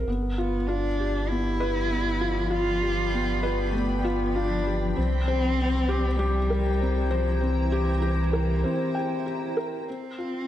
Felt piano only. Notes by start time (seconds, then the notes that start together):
0.08 B3
0.38 F4
0.69 F4
1.00 G4
1.30 B3
1.60 B4
1.90 B3
2.21 F4
2.50 F4
2.82 G4
3.13 B3
3.43 B4
3.75 B3
4.04 F4
4.36 F4
4.67 G4
4.96 C4
5.28 C5
5.59 C4
5.88 G4
6.19 G4
6.50 A#4
6.81 C4
7.11 C5
7.41 C4
7.72 G4
8.02 G4
8.33 A#4
8.64 C4
8.95 G5
9.26 G4
9.57 A#4
9.88 C4
10.18 F4